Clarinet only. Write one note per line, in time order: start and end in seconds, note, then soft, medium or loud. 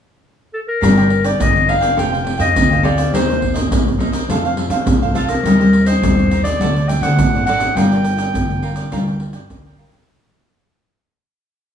0.54 0.60 A4 medium
0.68 1.27 A#4 medium
1.25 1.43 D5 medium
1.42 1.71 D#5 medium
1.69 1.98 F5 medium
1.99 2.39 G5 medium
2.41 2.81 D#5 medium
2.84 3.11 D5 medium
3.14 3.67 C5 medium
5.17 5.30 A4 medium
5.29 5.88 A#4 medium
5.86 6.43 C5 medium
6.44 6.90 D5 loud
6.89 7.04 G5 medium
7.02 7.45 F#5 medium
7.46 7.77 F#5 loud
7.76 9.50 G5 loud